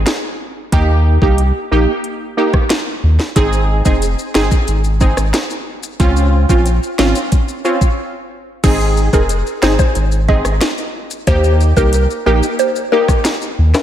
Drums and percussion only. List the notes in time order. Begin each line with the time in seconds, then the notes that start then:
0.06 snare, closed hi-hat
0.72 kick, closed hi-hat
1.22 kick
1.38 closed hi-hat
2.04 closed hi-hat
2.54 kick, cross-stick
2.70 snare, closed hi-hat
3.20 snare
3.36 kick, closed hi-hat, maracas
3.53 maracas
3.85 kick, maracas
4.02 closed hi-hat, maracas
4.19 maracas
4.35 snare, maracas
4.51 kick, maracas
4.68 closed hi-hat, maracas
4.84 maracas
5.00 kick, maracas
5.17 cross-stick, maracas
5.34 snare, closed hi-hat, maracas
5.50 maracas
5.83 maracas
6.00 kick, closed hi-hat, maracas
6.17 maracas
6.49 kick, maracas
6.66 closed hi-hat, maracas
6.83 maracas
6.99 snare, maracas
7.15 maracas
7.32 kick, closed hi-hat, maracas
7.48 maracas
7.65 maracas
7.81 kick, maracas
8.64 kick, closed hi-hat, crash, maracas
8.80 maracas
8.97 maracas
9.13 kick, maracas
9.29 closed hi-hat, maracas
9.47 maracas
9.62 snare
9.79 kick, maracas
9.95 closed hi-hat, maracas
10.12 maracas
10.29 kick
10.45 cross-stick, maracas
10.61 snare, closed hi-hat, maracas
10.78 maracas
11.11 maracas
11.27 kick, closed hi-hat, maracas
11.44 maracas
11.61 maracas
11.77 kick, maracas
11.93 closed hi-hat, maracas
12.10 maracas
12.43 maracas
12.59 closed hi-hat, maracas
12.76 maracas
13.08 kick, cross-stick, maracas
13.25 snare, closed hi-hat, maracas
13.42 maracas
13.74 snare, high timbale, maracas